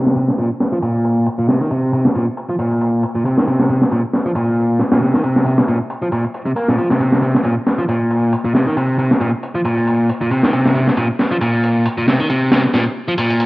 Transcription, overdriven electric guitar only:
0.00 0.15 C3 medium
0.16 0.28 C3 medium
0.38 0.48 A#2 medium
0.73 0.77 F3 medium
0.82 1.26 A#2 medium
1.39 1.48 A#2 medium
1.48 1.60 C3 medium
1.61 1.69 D#3 medium
1.71 1.92 C3 medium
1.93 2.05 C3 medium
2.15 2.25 A#2 medium
2.49 2.54 F3 medium
2.59 3.02 A#2 medium
3.15 3.24 A#2 medium
3.25 3.36 C3 medium
3.37 3.45 D#3 medium
3.47 3.68 C3 medium
3.70 3.81 C3 medium
3.92 4.01 A#2 medium
4.26 4.31 F3 medium
4.36 4.79 A#2 medium
4.92 5.01 A#2 medium
5.02 5.13 C3 medium
5.14 5.22 D#3 medium
5.24 5.45 C3 medium
5.46 5.57 C3 medium
5.68 5.78 A#2 medium
6.02 6.07 F3 medium
6.12 6.23 A#2 medium
6.46 6.51 C3 medium
6.56 6.68 A#3 medium
6.68 6.76 A#2 medium
6.78 6.88 F3 medium
6.90 6.99 C3 medium
7.00 7.21 C3 medium
7.22 7.34 C3 medium
7.44 7.54 A#2 medium
7.79 7.83 F3 medium
7.89 8.32 A#2 medium
8.45 8.54 A#2 medium
8.55 8.66 C3 medium
8.67 8.75 D#3 medium
8.77 8.97 C3 medium
8.99 9.10 C3 medium
9.21 9.30 A#2 medium
9.55 9.60 F3 medium
9.65 10.08 A#2 medium
10.21 10.30 A#2 medium
10.31 10.42 C3 medium
10.43 10.51 D#3 medium
10.53 10.74 C3 medium
10.75 10.87 C3 medium
10.97 11.07 A#2 medium
11.31 11.36 F3 medium
11.41 11.84 A#2 medium
11.98 12.07 A#2 medium
12.08 12.18 C3 medium
12.20 12.28 D#3 medium
12.30 12.51 C3 medium
12.52 12.63 C3 medium
12.74 12.83 A#2 medium
13.08 13.13 F3 medium
13.18 13.46 A#2 medium

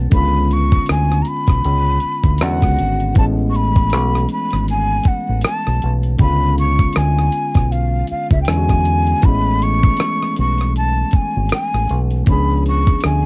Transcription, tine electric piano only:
0.10 2.35 D3 medium
0.10 2.35 G#3 medium
0.10 2.36 B3 medium
0.14 2.37 C#4 medium
0.14 2.38 F4 medium
2.40 3.16 D3 medium
2.40 2.48 F#3 soft
2.40 3.16 B3 medium
2.40 3.17 C#4 soft
2.40 3.17 F#4 medium
2.47 3.19 G#3 medium
3.14 6.15 E3 medium
3.14 6.15 A3 soft
3.14 6.16 B3 medium
3.19 6.18 G#3 medium
3.19 6.17 C#4 soft
6.18 8.42 D3 medium
6.18 8.43 G#3 medium
6.18 8.44 B3 soft
6.22 8.45 C#4 medium
6.22 8.46 F4 medium
8.48 9.23 D3 medium
8.48 9.24 G#3 medium
8.48 9.23 B3 medium
8.48 9.25 C#4 medium
8.48 8.56 E4 soft
8.57 9.28 F#4 medium
9.21 12.22 E3 medium
9.21 12.23 A3 medium
9.21 12.24 B3 medium
9.26 12.25 G#3 medium
9.26 12.24 C#4 medium
12.26 13.26 F3 medium
12.26 13.26 B3 medium
12.26 13.26 C#4 soft
12.31 13.26 D4 medium
12.31 13.26 G#4 medium

